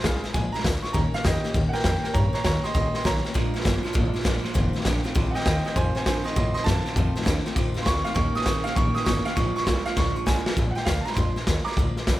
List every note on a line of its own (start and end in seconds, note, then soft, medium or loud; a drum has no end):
0.04 0.23 C2 loud
0.04 0.24 F3 medium
0.04 0.24 G#3 medium
0.04 0.24 D4 medium
0.04 0.22 F4 loud
0.04 0.23 F4 medium
0.04 0.23 G#4 loud
0.04 kick medium
0.04 snare loud
0.04 hi-hat pedal medium
0.24 0.34 G#3 soft
0.24 0.34 D4 medium
0.24 0.34 F4 medium
0.24 muted upright bass stroke medium
0.24 snare soft
0.33 0.53 A#1 medium
0.33 0.54 A#2 medium
0.33 0.54 F3 medium
0.33 0.54 G#3 medium
0.33 0.54 D4 medium
0.33 0.53 F4 medium
0.33 0.53 G#5 loud
0.33 kick loud
0.33 snare soft
0.52 0.64 G#3 soft
0.52 0.65 D4 medium
0.52 0.65 F4 medium
0.52 0.63 A#5 loud
0.52 muted upright bass stroke medium
0.52 snare soft
0.59 snare soft
0.64 0.83 D2 medium
0.64 0.84 F3 medium
0.64 0.84 G#3 medium
0.64 0.83 D4 medium
0.64 0.82 F4 medium
0.64 kick medium
0.64 snare loud
0.64 hi-hat pedal medium
0.82 0.94 G#3 soft
0.82 0.94 D4 soft
0.82 0.94 F4 medium
0.82 0.93 C#6 medium
0.82 muted upright bass stroke medium
0.82 snare soft
0.93 1.12 D#2 medium
0.93 1.14 D#3 medium
0.93 1.14 A#3 medium
0.93 1.14 C#4 medium
0.93 1.13 G4 medium
0.93 1.13 A#5 loud
0.93 kick loud
0.93 snare soft
1.13 1.24 A#3 soft
1.13 1.24 C#4 medium
1.13 1.24 G4 medium
1.13 1.24 F5 loud
1.13 muted upright bass stroke medium
1.13 snare soft
1.24 1.42 F2 loud
1.24 1.44 D#3 medium
1.24 1.44 A#3 medium
1.24 1.44 C#4 medium
1.24 1.52 G4 medium
1.24 1.43 G4 medium
1.24 1.54 D#5 loud
1.24 kick loud
1.24 snare loud
1.24 hi-hat pedal medium
1.43 1.54 A#3 soft
1.43 1.54 C#4 medium
1.43 1.55 G4 medium
1.43 muted upright bass stroke medium
1.43 snare soft
1.54 1.73 D#2 medium
1.54 1.74 D#3 medium
1.54 1.75 A#3 medium
1.54 1.75 C#4 medium
1.54 1.74 G4 medium
1.54 kick loud
1.54 snare soft
1.69 1.71 F#5 medium
1.73 1.86 C#4 medium
1.73 1.85 G4 medium
1.73 1.83 A#4 loud
1.73 1.83 G5 loud
1.73 muted upright bass stroke medium
1.73 snare soft
1.77 1.85 A#3 soft
1.77 snare soft
1.84 2.02 F2 medium
1.84 2.05 D#3 medium
1.84 2.05 A#3 medium
1.84 2.05 C#4 medium
1.84 2.04 G4 medium
1.84 2.02 A#4 medium
1.84 2.02 G5 loud
1.84 kick medium
1.84 snare loud
1.84 hi-hat pedal medium
2.02 2.15 C#4 medium
2.02 2.15 G4 medium
2.02 2.14 A#4 medium
2.02 2.14 G5 loud
2.02 muted upright bass stroke medium
2.02 snare soft
2.07 2.14 A#3 soft
2.13 2.32 G2 medium
2.13 2.34 D#3 medium
2.13 2.34 A#3 medium
2.13 2.34 C#4 medium
2.13 2.32 G4 medium
2.13 2.32 C#5 medium
2.13 2.33 A#5 loud
2.13 kick loud
2.13 snare soft
2.33 2.44 A#3 soft
2.33 2.45 C#4 medium
2.33 2.44 G4 medium
2.33 2.42 C#5 medium
2.33 2.43 A#5 loud
2.33 muted upright bass stroke medium
2.33 snare soft
2.44 2.63 D#2 loud
2.44 2.64 D#3 medium
2.44 2.65 A#3 medium
2.44 2.64 C#4 medium
2.44 2.63 G4 medium
2.44 2.63 C#5 loud
2.44 2.64 A#5 loud
2.44 kick medium
2.44 snare loud
2.44 hi-hat pedal medium
2.63 2.74 A#3 soft
2.63 2.74 C#4 soft
2.63 2.75 G4 medium
2.63 2.73 D#5 medium
2.63 2.73 C6 loud
2.63 muted upright bass stroke medium
2.63 snare soft
2.74 2.93 C#2 medium
2.74 2.94 D#3 medium
2.74 2.95 A#3 medium
2.74 2.95 C#4 medium
2.74 2.93 G4 medium
2.74 2.93 D#5 medium
2.74 2.93 C6 loud
2.74 kick loud
2.74 snare soft
2.94 3.04 A#3 soft
2.94 3.04 C#4 medium
2.94 3.05 G4 medium
2.94 3.04 D#5 medium
2.94 3.05 C6 loud
2.94 muted upright bass stroke medium
2.94 snare soft
3.04 3.24 B1 medium
3.04 3.24 D#3 medium
3.04 3.25 A#3 medium
3.04 3.24 C#4 medium
3.04 3.23 G4 medium
3.04 3.33 C#5 medium
3.04 3.64 A#5 loud
3.04 kick medium
3.04 snare loud
3.04 hi-hat pedal medium
3.24 3.35 A#3 soft
3.24 3.35 C#4 medium
3.24 3.35 G4 medium
3.24 snare soft
3.34 3.54 A#1 medium
3.34 3.54 A#2 medium
3.34 3.63 A#2 medium
3.34 3.54 F3 medium
3.34 3.63 F3 loud
3.34 3.54 G#3 medium
3.34 3.53 D4 medium
3.34 3.53 F4 medium
3.34 kick loud
3.34 snare soft
3.54 3.64 G#3 medium
3.54 3.65 D4 medium
3.54 3.65 F4 medium
3.54 snare soft
3.60 3.82 A#2 loud
3.60 snare soft
3.65 3.83 G1 loud
3.65 3.85 F3 medium
3.65 3.83 G3 loud
3.65 3.84 G#3 medium
3.65 3.83 D4 medium
3.65 3.82 F4 medium
3.65 kick loud
3.65 snare loud
3.65 hi-hat pedal medium
3.83 3.93 A#2 medium
3.83 3.93 F3 medium
3.83 3.93 G#3 medium
3.83 3.93 D4 medium
3.83 3.93 F4 medium
3.83 muted upright bass stroke medium
3.83 snare soft
3.93 4.14 G#1 medium
3.93 4.14 A#2 medium
3.93 4.23 A#2 medium
3.93 4.14 F3 loud
3.93 4.23 F3 loud
3.93 4.14 G#3 loud
3.93 4.13 D4 loud
3.93 4.12 F4 loud
3.93 kick loud
3.93 snare soft
4.14 4.23 G#3 medium
4.14 4.24 D4 medium
4.14 4.25 F4 medium
4.14 snare soft
4.20 4.44 F3 medium
4.20 snare soft
4.25 4.43 A#1 medium
4.25 4.43 A#2 medium
4.25 4.43 F3 loud
4.25 4.45 G#3 medium
4.25 4.44 D4 medium
4.25 4.42 F4 medium
4.25 kick medium
4.25 snare loud
4.25 hi-hat pedal medium
4.44 4.54 A#2 medium
4.44 4.54 F3 medium
4.44 4.55 G#3 medium
4.44 4.55 D4 medium
4.44 4.54 F4 medium
4.44 muted upright bass stroke medium
4.44 snare soft
4.54 4.73 F1 loud
4.54 4.83 F2 medium
4.54 4.75 F2 medium
4.54 4.74 C3 medium
4.54 4.83 C3 medium
4.54 4.74 D#3 loud
4.54 4.73 A3 loud
4.54 4.73 C4 loud
4.54 4.72 F4 loud
4.54 kick loud
4.54 snare soft
4.73 4.84 D#3 medium
4.73 4.85 A3 medium
4.73 4.85 C4 medium
4.73 4.85 F4 medium
4.73 muted upright bass stroke medium
4.73 snare soft
4.80 5.03 F2 medium
4.80 snare soft
4.85 5.04 A#1 loud
4.85 5.03 D3 loud
4.85 5.05 D#3 medium
4.85 5.04 A3 medium
4.85 5.03 C4 medium
4.85 5.03 F4 medium
4.85 kick medium
4.85 snare loud
4.85 hi-hat pedal loud
5.04 5.14 F2 medium
5.04 5.15 C3 medium
5.04 5.14 D#3 medium
5.04 5.14 A3 medium
5.04 5.14 C4 medium
5.04 5.15 F4 medium
5.04 muted upright bass stroke medium
5.04 snare soft
5.15 5.35 C2 medium
5.15 5.35 F2 medium
5.15 5.43 F2 medium
5.15 5.35 C3 loud
5.15 5.44 C3 medium
5.15 5.35 D#3 medium
5.15 5.35 A3 medium
5.15 5.35 C4 loud
5.15 5.33 F4 loud
5.15 kick loud
5.15 snare soft
5.31 5.45 F4 medium
5.31 5.44 D#5 medium
5.31 5.33 F#5 medium
5.35 5.44 D#3 soft
5.35 5.45 A3 soft
5.35 5.46 C4 medium
5.35 5.44 G5 loud
5.35 muted upright bass stroke medium
5.35 snare soft
5.40 snare soft
5.45 5.65 D#2 medium
5.45 5.63 F2 medium
5.45 5.64 C3 medium
5.45 5.65 D#3 medium
5.45 5.65 A3 medium
5.45 5.64 C4 medium
5.45 5.63 F4 medium
5.45 5.64 D#5 medium
5.45 5.65 G5 medium
5.45 kick medium
5.45 snare loud
5.45 hi-hat pedal medium
5.64 5.75 F2 medium
5.64 5.75 C3 medium
5.64 5.75 D#3 soft
5.64 5.75 A3 soft
5.64 5.76 C4 soft
5.64 5.75 F4 medium
5.64 5.75 D#5 medium
5.64 5.76 G5 medium
5.64 muted upright bass stroke medium
5.64 snare soft
5.76 5.95 F2 medium
5.76 5.95 F2 loud
5.76 6.04 F2 medium
5.76 5.96 C3 medium
5.76 6.04 C3 loud
5.76 5.96 D#3 medium
5.76 5.95 A3 medium
5.76 5.94 C4 medium
5.76 5.94 F4 medium
5.76 5.94 C5 medium
5.76 5.95 G#5 loud
5.76 kick loud
5.76 snare soft
5.95 6.05 D#3 medium
5.95 6.06 A3 soft
5.95 6.06 C4 medium
5.95 6.06 F4 medium
5.95 6.04 C5 medium
5.95 6.05 G#5 loud
5.95 snare soft
6.05 6.24 F2 medium
6.05 6.24 G2 loud
6.05 6.24 D3 medium
6.05 6.25 D#3 medium
6.05 6.24 A3 medium
6.05 6.23 C4 medium
6.05 6.23 F4 medium
6.05 6.24 C5 medium
6.05 6.25 G#5 loud
6.05 kick medium
6.05 snare loud
6.05 hi-hat pedal loud
6.24 6.34 F2 medium
6.24 6.35 C3 medium
6.24 6.35 D#3 soft
6.24 6.36 A3 medium
6.24 6.36 C4 medium
6.24 6.35 F4 medium
6.24 6.34 D#5 medium
6.24 6.35 C6 loud
6.24 muted upright bass stroke soft
6.24 snare soft
6.36 6.64 F2 medium
6.36 6.56 F2 medium
6.36 6.55 A2 medium
6.36 6.64 C3 medium
6.36 6.56 C3 medium
6.36 6.56 D#3 medium
6.36 6.55 A3 medium
6.36 6.55 C4 medium
6.36 6.54 F4 medium
6.36 6.53 D#5 medium
6.36 6.53 C6 loud
6.36 kick loud
6.36 snare soft
6.54 6.65 D#3 soft
6.54 6.67 A3 soft
6.54 6.66 C4 medium
6.54 6.66 F4 medium
6.54 6.65 D#5 loud
6.54 6.65 C6 loud
6.54 muted upright bass stroke medium
6.54 snare soft
6.64 6.84 F2 medium
6.64 6.85 F#2 medium
6.64 6.84 C3 loud
6.64 6.86 D#3 medium
6.64 6.86 A3 medium
6.64 7.23 A5 loud
6.64 kick medium
6.64 snare loud
6.64 hi-hat pedal medium
6.68 6.85 C4 medium
6.68 6.85 F4 medium
6.85 6.94 F2 medium
6.85 6.94 C3 medium
6.85 6.96 D#3 soft
6.85 6.96 A3 soft
6.85 6.96 C4 soft
6.85 6.96 F4 medium
6.85 muted upright bass stroke medium
6.85 snare soft
6.95 7.24 F2 medium
6.95 7.15 F2 loud
6.95 7.16 F2 medium
6.95 7.24 C3 loud
6.95 7.16 C3 medium
6.95 7.16 D#3 medium
6.95 7.16 A3 medium
6.95 7.15 C4 medium
6.95 7.14 F4 medium
6.95 kick loud
6.95 snare soft
7.15 7.24 D#3 medium
7.15 7.25 A3 medium
7.15 7.26 C4 medium
7.15 7.26 F4 medium
7.15 muted upright bass stroke medium
7.15 snare soft
7.21 7.43 F2 medium
7.21 snare soft
7.25 7.45 D#2 loud
7.25 7.44 D3 loud
7.25 7.45 D#3 medium
7.25 7.46 A3 medium
7.25 7.45 C4 medium
7.25 7.45 F4 medium
7.25 kick medium
7.25 snare loud
7.25 hi-hat pedal loud
7.44 7.54 F2 medium
7.44 7.54 C3 medium
7.44 7.56 D#3 medium
7.44 7.56 A3 medium
7.44 7.56 C4 medium
7.44 7.56 F4 medium
7.44 muted upright bass stroke medium
7.44 snare soft
7.55 7.74 C2 medium
7.55 7.83 F2 medium
7.55 7.76 F2 loud
7.55 7.84 C3 loud
7.55 7.76 C3 medium
7.55 7.75 D#3 loud
7.55 7.75 A3 medium
7.55 7.74 C4 loud
7.55 7.73 F4 loud
7.55 kick loud
7.55 snare soft
7.74 7.84 D#3 medium
7.74 7.84 A3 medium
7.74 7.86 C4 medium
7.74 7.86 F4 medium
7.74 snare soft
7.81 8.03 F2 medium
7.81 7.85 C6 medium
7.81 snare soft
7.85 8.05 D2 loud
7.85 8.03 C3 loud
7.85 8.05 D#3 medium
7.85 8.05 A3 medium
7.85 8.04 C4 medium
7.85 8.04 F4 medium
7.85 8.05 C#6 loud
7.85 kick medium
7.85 snare loud
7.85 hi-hat pedal medium
8.04 8.15 F2 medium
8.04 8.14 C3 medium
8.04 8.13 D#3 soft
8.04 8.15 A3 medium
8.04 8.15 C4 medium
8.04 8.16 F4 medium
8.04 8.15 F5 loud
8.04 snare soft
8.14 8.34 D#2 medium
8.14 8.43 D#3 medium
8.14 8.35 D#3 medium
8.14 8.44 A#3 loud
8.14 8.35 A#3 medium
8.14 8.35 C#4 medium
8.14 8.34 G4 medium
8.14 8.34 C#6 loud
8.14 kick loud
8.14 snare soft
8.35 8.45 A#3 soft
8.35 8.46 C#4 medium
8.35 8.46 G4 medium
8.35 8.46 D#6 loud
8.35 muted upright bass stroke medium
8.35 snare soft
8.41 8.63 D#3 medium
8.41 snare soft
8.45 8.64 C#2 loud
8.45 8.65 D#3 medium
8.45 8.63 C4 medium
8.45 8.64 G4 medium
8.45 8.65 C#6 loud
8.45 kick loud
8.45 snare loud
8.45 hi-hat pedal loud
8.64 8.74 D#3 medium
8.64 8.74 A#3 loud
8.64 8.76 A#3 soft
8.64 8.76 C#4 medium
8.64 8.76 G4 medium
8.64 8.75 F5 loud
8.64 snare soft
8.75 8.95 A#1 medium
8.75 9.04 D#3 medium
8.75 8.96 D#3 medium
8.75 9.04 A#3 loud
8.75 8.96 A#3 medium
8.75 8.95 C#4 medium
8.75 8.95 G4 medium
8.75 8.95 C#6 loud
8.75 kick loud
8.75 snare soft
8.95 9.05 A#3 soft
8.95 9.06 C#4 medium
8.95 9.06 G4 medium
8.95 9.05 D#6 loud
8.95 snare soft
9.05 9.25 G1 medium
9.05 9.24 D#3 medium
9.05 9.26 D#3 medium
9.05 9.24 A#3 loud
9.05 9.26 A#3 medium
9.05 9.26 C#4 medium
9.05 9.24 G4 medium
9.05 9.24 C#6 loud
9.05 kick medium
9.05 snare loud
9.05 hi-hat pedal medium
9.25 9.35 D#3 medium
9.25 9.35 A#3 medium
9.25 9.37 A#3 soft
9.25 9.37 C#4 soft
9.25 9.36 G4 medium
9.25 9.36 F5 loud
9.25 snare soft
9.35 9.56 A#1 medium
9.35 9.64 A#2 medium
9.35 9.56 A#2 medium
9.35 9.64 F3 loud
9.35 9.56 F3 medium
9.35 9.56 G#3 medium
9.35 9.56 D4 medium
9.35 9.55 F4 loud
9.35 9.55 C#6 loud
9.35 kick loud
9.35 snare soft
9.56 9.66 G#3 soft
9.56 9.66 D4 medium
9.56 9.66 F4 medium
9.56 9.65 C#6 loud
9.56 snare soft
9.62 9.84 A#2 loud
9.62 9.86 F3 medium
9.62 9.84 G3 loud
9.62 9.65 C6 medium
9.67 9.86 C2 loud
9.67 9.86 G#3 medium
9.67 9.86 D4 medium
9.67 9.85 F4 medium
9.67 9.86 C#6 loud
9.67 kick medium
9.67 snare loud
9.67 hi-hat pedal loud
9.86 9.95 A#2 medium
9.86 9.96 F3 medium
9.86 9.96 G#3 soft
9.86 9.97 D4 medium
9.86 9.97 F4 medium
9.86 9.96 F5 loud
9.86 muted upright bass stroke medium
9.86 snare soft
9.97 10.16 D2 medium
9.97 10.25 A#2 medium
9.97 10.16 A#2 medium
9.97 10.16 F3 medium
9.97 10.25 F3 medium
9.97 10.17 G#3 medium
9.97 10.16 D4 medium
9.97 10.15 F4 medium
9.97 10.14 C#6 loud
9.97 kick loud
9.97 snare medium
10.15 10.25 G#3 soft
10.15 10.26 D4 medium
10.15 10.27 F4 medium
10.15 10.26 C#6 loud
10.15 muted upright bass stroke medium
10.26 10.46 C2 medium
10.26 10.44 A#2 medium
10.26 10.46 F3 medium
10.26 10.45 F3 medium
10.26 10.46 G#3 medium
10.26 10.46 D4 medium
10.26 10.45 F4 medium
10.26 10.56 G#5 loud
10.26 kick medium
10.26 snare medium
10.26 hi-hat pedal medium
10.46 10.56 A#2 medium
10.46 10.56 F3 loud
10.46 10.56 G#3 soft
10.46 10.56 D4 medium
10.46 10.57 F4 medium
10.46 muted upright bass stroke medium
10.46 snare loud
10.56 10.75 A#1 medium
10.56 10.76 A#2 medium
10.56 10.76 F3 medium
10.56 10.77 G#3 medium
10.56 10.75 D4 medium
10.56 10.74 F4 medium
10.56 kick loud
10.56 snare soft
10.71 10.73 F#5 medium
10.75 10.86 G#3 soft
10.75 10.87 D4 medium
10.75 10.86 F4 medium
10.75 10.86 G5 loud
10.75 muted upright bass stroke medium
10.75 snare soft
10.85 11.05 D2 loud
10.85 11.06 F3 medium
10.85 11.06 G#3 medium
10.85 11.06 D4 medium
10.85 11.04 F4 medium
10.85 11.05 F5 loud
10.85 kick medium
10.85 snare loud
10.85 hi-hat pedal medium
11.01 11.03 A5 medium
11.05 11.16 G#3 soft
11.05 11.16 D4 medium
11.05 11.16 F4 medium
11.05 11.16 A#5 medium
11.05 muted upright bass stroke medium
11.05 snare soft
11.10 11.13 B5 medium
11.10 snare soft
11.14 11.35 F2 medium
11.14 11.36 A#2 medium
11.14 11.36 F3 medium
11.14 11.37 G#3 medium
11.14 11.36 D4 medium
11.14 11.35 F4 medium
11.14 11.64 C6 medium
11.14 kick loud
11.14 snare soft
11.35 11.47 G#3 soft
11.35 11.47 D4 soft
11.35 11.47 F4 medium
11.35 muted upright bass stroke medium
11.35 snare soft
11.47 11.65 D#2 medium
11.47 11.66 F3 medium
11.47 11.67 G#3 medium
11.47 11.67 D4 medium
11.47 11.65 F4 medium
11.47 kick medium
11.47 snare loud
11.47 hi-hat pedal medium
11.64 11.78 D4 soft
11.64 11.77 F4 medium
11.64 11.93 A#5 medium
11.64 11.95 D6 medium
11.64 muted upright bass stroke medium
11.64 snare soft
11.69 11.78 G#3 soft
11.69 snare soft
11.77 11.95 D2 medium
11.77 11.97 A#2 medium
11.77 11.97 F3 medium
11.77 11.98 G#3 medium
11.77 11.97 D4 medium
11.77 11.96 F4 medium
11.77 kick loud
11.77 snare soft
11.95 12.07 G#3 soft
11.95 12.08 D4 soft
11.95 12.08 F4 medium
11.95 muted upright bass stroke medium
11.95 snare soft
12.07 12.20 C2 loud
12.07 12.20 F3 medium
12.07 12.20 G#3 medium
12.07 12.20 D4 medium
12.07 12.20 F4 medium
12.07 kick medium
12.07 snare loud
12.07 hi-hat pedal medium